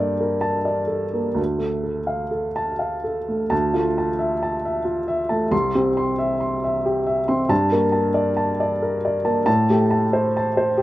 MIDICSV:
0, 0, Header, 1, 2, 480
1, 0, Start_track
1, 0, Key_signature, -1, "minor"
1, 0, Tempo, 700935
1, 944, Time_signature, 3, 2, 24, 8
1, 2871, Tempo, 665188
1, 4791, Tempo, 653595
1, 7707, End_track
2, 0, Start_track
2, 0, Title_t, "Upright piano"
2, 0, Program_c, 0, 0
2, 0, Control_c, 0, 64, 127
2, 0, Note_on_c, 0, 43, 52
2, 0, Note_on_c, 0, 58, 41
2, 0, Note_on_c, 0, 69, 34
2, 0, Note_on_c, 0, 74, 43
2, 83, Note_off_c, 0, 69, 0
2, 139, Note_on_c, 0, 70, 38
2, 237, Note_off_c, 0, 74, 0
2, 281, Note_on_c, 0, 81, 54
2, 394, Note_off_c, 0, 70, 0
2, 447, Note_on_c, 0, 74, 38
2, 545, Note_off_c, 0, 81, 0
2, 596, Note_on_c, 0, 69, 35
2, 710, Note_off_c, 0, 74, 0
2, 776, Note_off_c, 0, 58, 0
2, 776, Note_on_c, 0, 58, 34
2, 867, Note_off_c, 0, 69, 0
2, 920, Note_off_c, 0, 43, 0
2, 922, Note_on_c, 0, 38, 42
2, 942, Note_off_c, 0, 58, 0
2, 959, Control_c, 0, 64, 0
2, 1082, Control_c, 0, 64, 127
2, 1084, Note_on_c, 0, 57, 37
2, 1256, Note_on_c, 0, 69, 34
2, 1357, Note_off_c, 0, 57, 0
2, 1417, Note_on_c, 0, 77, 38
2, 1524, Note_off_c, 0, 69, 0
2, 1583, Note_on_c, 0, 69, 35
2, 1685, Note_off_c, 0, 77, 0
2, 1752, Note_on_c, 0, 81, 48
2, 1848, Note_off_c, 0, 69, 0
2, 1911, Note_on_c, 0, 77, 34
2, 2014, Note_off_c, 0, 81, 0
2, 2081, Note_on_c, 0, 69, 35
2, 2177, Note_off_c, 0, 77, 0
2, 2249, Note_on_c, 0, 57, 33
2, 2342, Note_off_c, 0, 69, 0
2, 2368, Note_off_c, 0, 38, 0
2, 2397, Note_on_c, 0, 81, 59
2, 2403, Note_on_c, 0, 38, 52
2, 2408, Note_off_c, 0, 57, 0
2, 2419, Control_c, 0, 64, 0
2, 2553, Control_c, 0, 64, 127
2, 2559, Note_on_c, 0, 65, 44
2, 2563, Note_on_c, 0, 57, 42
2, 2651, Note_off_c, 0, 81, 0
2, 2725, Note_on_c, 0, 81, 41
2, 2807, Note_off_c, 0, 65, 0
2, 2809, Note_off_c, 0, 57, 0
2, 2869, Note_on_c, 0, 76, 44
2, 2970, Note_off_c, 0, 81, 0
2, 3039, Note_on_c, 0, 81, 43
2, 3125, Note_off_c, 0, 76, 0
2, 3203, Note_on_c, 0, 76, 44
2, 3290, Note_off_c, 0, 81, 0
2, 3344, Note_on_c, 0, 65, 40
2, 3450, Note_off_c, 0, 76, 0
2, 3511, Note_on_c, 0, 76, 44
2, 3602, Note_off_c, 0, 65, 0
2, 3665, Note_on_c, 0, 81, 43
2, 3672, Note_on_c, 0, 57, 39
2, 3767, Note_off_c, 0, 76, 0
2, 3799, Note_off_c, 0, 38, 0
2, 3823, Note_on_c, 0, 36, 52
2, 3825, Note_on_c, 0, 84, 66
2, 3828, Note_off_c, 0, 81, 0
2, 3832, Note_off_c, 0, 57, 0
2, 3841, Control_c, 0, 64, 0
2, 3949, Control_c, 0, 64, 127
2, 3994, Note_on_c, 0, 60, 38
2, 3994, Note_on_c, 0, 67, 42
2, 4085, Note_off_c, 0, 84, 0
2, 4154, Note_on_c, 0, 84, 43
2, 4249, Note_off_c, 0, 60, 0
2, 4249, Note_off_c, 0, 67, 0
2, 4309, Note_on_c, 0, 76, 48
2, 4409, Note_off_c, 0, 84, 0
2, 4466, Note_on_c, 0, 84, 43
2, 4565, Note_off_c, 0, 76, 0
2, 4636, Note_on_c, 0, 76, 43
2, 4723, Note_off_c, 0, 84, 0
2, 4792, Note_on_c, 0, 67, 45
2, 4888, Note_off_c, 0, 76, 0
2, 4947, Note_on_c, 0, 76, 43
2, 5047, Note_off_c, 0, 67, 0
2, 5104, Note_on_c, 0, 84, 44
2, 5109, Note_on_c, 0, 60, 44
2, 5202, Note_off_c, 0, 76, 0
2, 5234, Note_off_c, 0, 36, 0
2, 5258, Note_on_c, 0, 43, 56
2, 5262, Note_on_c, 0, 81, 69
2, 5265, Note_off_c, 0, 84, 0
2, 5267, Note_off_c, 0, 60, 0
2, 5279, Control_c, 0, 64, 0
2, 5392, Control_c, 0, 64, 127
2, 5426, Note_on_c, 0, 58, 43
2, 5428, Note_on_c, 0, 70, 49
2, 5519, Note_off_c, 0, 81, 0
2, 5576, Note_on_c, 0, 81, 45
2, 5682, Note_off_c, 0, 58, 0
2, 5683, Note_off_c, 0, 70, 0
2, 5738, Note_on_c, 0, 74, 49
2, 5840, Note_off_c, 0, 81, 0
2, 5902, Note_on_c, 0, 81, 45
2, 6003, Note_off_c, 0, 74, 0
2, 6075, Note_on_c, 0, 74, 48
2, 6166, Note_off_c, 0, 81, 0
2, 6238, Note_on_c, 0, 70, 44
2, 6331, Note_off_c, 0, 74, 0
2, 6403, Note_on_c, 0, 74, 49
2, 6489, Note_off_c, 0, 70, 0
2, 6550, Note_on_c, 0, 58, 43
2, 6550, Note_on_c, 0, 81, 49
2, 6650, Note_off_c, 0, 74, 0
2, 6674, Note_off_c, 0, 43, 0
2, 6694, Note_off_c, 0, 81, 0
2, 6705, Note_on_c, 0, 81, 73
2, 6707, Note_on_c, 0, 45, 63
2, 6708, Note_off_c, 0, 58, 0
2, 6723, Control_c, 0, 64, 0
2, 6857, Control_c, 0, 64, 127
2, 6879, Note_on_c, 0, 57, 46
2, 6880, Note_on_c, 0, 67, 50
2, 6963, Note_off_c, 0, 81, 0
2, 7033, Note_on_c, 0, 81, 50
2, 7131, Note_off_c, 0, 57, 0
2, 7132, Note_off_c, 0, 67, 0
2, 7199, Note_on_c, 0, 72, 50
2, 7288, Note_off_c, 0, 81, 0
2, 7371, Note_on_c, 0, 81, 49
2, 7450, Note_off_c, 0, 72, 0
2, 7522, Note_on_c, 0, 72, 51
2, 7616, Note_off_c, 0, 81, 0
2, 7671, Note_on_c, 0, 67, 52
2, 7707, Note_off_c, 0, 45, 0
2, 7707, Note_off_c, 0, 67, 0
2, 7707, Note_off_c, 0, 72, 0
2, 7707, End_track
0, 0, End_of_file